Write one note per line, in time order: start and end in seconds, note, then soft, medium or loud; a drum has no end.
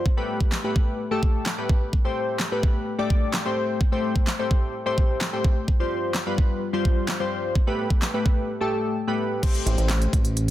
0.06 kick loud
0.17 0.52 A3 medium
0.17 0.52 G4 medium
0.17 0.52 B4 medium
0.41 kick loud
0.52 snare medium
0.52 clap loud
0.64 0.99 A3 medium
0.64 0.99 G4 medium
0.64 0.99 B4 medium
0.76 kick medium
1.11 1.46 A3 medium
1.11 1.46 G4 medium
1.11 1.46 A4 loud
1.23 kick medium
1.46 snare medium
1.46 clap loud
1.58 1.93 A3 medium
1.58 1.93 G4 medium
1.58 1.93 B4 medium
1.69 kick medium
1.93 kick loud
2.04 2.40 A3 medium
2.04 2.40 G4 medium
2.04 2.40 C5 medium
2.40 snare medium
2.40 clap loud
2.52 2.87 A3 medium
2.52 2.87 G4 medium
2.52 2.87 B4 medium
2.63 kick medium
2.98 3.33 A3 loud
2.98 3.34 G4 medium
2.98 3.34 D5 loud
3.10 kick medium
3.34 snare medium
3.34 clap loud
3.45 3.80 A3 medium
3.45 3.80 G4 medium
3.45 3.80 C5 medium
3.81 kick loud
3.92 4.27 A3 medium
3.92 4.27 G4 medium
3.92 4.27 C5 loud
4.16 kick medium
4.27 snare medium
4.27 clap loud
4.39 4.74 A3 medium
4.39 4.74 G4 medium
4.39 4.74 C5 medium
4.51 kick medium
4.86 5.21 A3 medium
4.86 5.21 G4 medium
4.86 5.21 C5 loud
4.98 kick medium
5.21 snare loud
5.21 clap loud
5.33 5.68 A3 medium
5.33 5.68 G4 medium
5.33 5.68 C5 medium
5.45 kick medium
5.68 kick loud
5.80 6.15 G3 medium
5.80 6.15 F4 medium
5.80 6.15 C5 medium
6.14 snare medium
6.14 clap loud
6.26 6.61 G3 medium
6.26 6.62 F4 medium
6.26 6.62 B4 medium
6.38 kick medium
6.73 7.08 G3 medium
6.73 7.08 F4 medium
6.73 7.09 C5 loud
6.85 kick medium
7.08 snare medium
7.08 clap loud
7.20 7.55 G3 medium
7.20 7.55 F4 medium
7.20 7.55 C5 medium
7.55 kick loud
7.67 8.02 A3 medium
7.67 8.02 G4 medium
7.67 8.02 B4 loud
7.90 kick loud
8.02 snare medium
8.02 clap loud
8.14 8.49 A3 medium
8.14 8.49 G4 medium
8.14 8.49 B4 medium
8.26 kick medium
8.61 8.96 A3 medium
8.61 8.96 G4 medium
8.61 8.96 A4 loud
9.07 9.41 A3 medium
9.07 9.42 G4 medium
9.07 9.43 B4 medium
9.43 10.13 A3 medium
9.43 10.13 G4 medium
9.43 10.13 C5 medium
9.43 kick loud
9.43 closed hi-hat medium
9.43 crash medium
9.55 closed hi-hat soft
9.66 9.76 A1 loud
9.66 closed hi-hat medium
9.78 10.07 A1 medium
9.78 closed hi-hat soft
9.89 snare medium
9.89 clap loud
9.89 closed hi-hat medium
10.02 closed hi-hat medium
10.13 10.51 A1 medium
10.13 kick medium
10.13 closed hi-hat medium
10.25 closed hi-hat medium
10.37 closed hi-hat medium